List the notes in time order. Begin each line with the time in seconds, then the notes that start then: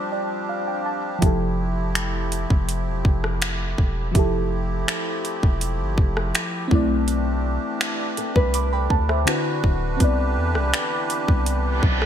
Already playing: F3 G3 C4 D4 F4 G4 C5
0.12 D5
0.49 F5
0.68 G5
0.86 A5
1.19 F1 F3 A3 E4, kick, closed hi-hat
1.24 G4 A4
1.95 finger snap, closed hi-hat
2.32 closed hi-hat
2.50 F1, kick
2.69 closed hi-hat
2.87 E1
3.05 F1, kick
3.24 cross-stick
3.42 finger snap, closed hi-hat
3.78 E1, kick
4.12 F1 F3 E4, kick, closed hi-hat
4.17 G4 A4
4.88 finger snap, closed hi-hat
5.25 closed hi-hat
5.43 E1, kick
5.61 closed hi-hat
5.80 G1
5.98 F1, kick
6.17 cross-stick
6.35 finger snap, closed hi-hat
6.68 B1 E3 A3 C4 D4, kick
6.73 E4 D5
7.08 closed hi-hat
7.81 finger snap, closed hi-hat
8.17 A4, closed hi-hat
8.36 C2 B4, kick
8.54 B5 D6, closed hi-hat
8.73 A4 G5 B5
8.90 D2 A5, kick
9.09 C5 E5, cross-stick
9.25 D3 E3 C4 E4 F#4 B4, finger snap, closed hi-hat
9.64 D1, kick
9.97 C2 B3 C4 G4, kick, closed hi-hat
10.02 E4 D5
10.37 E2
10.55 C2, cross-stick
10.74 finger snap, closed hi-hat
11.10 closed hi-hat
11.28 C2, kick
11.46 closed hi-hat, reverse cymbal
11.83 B1, kick
12.02 cross-stick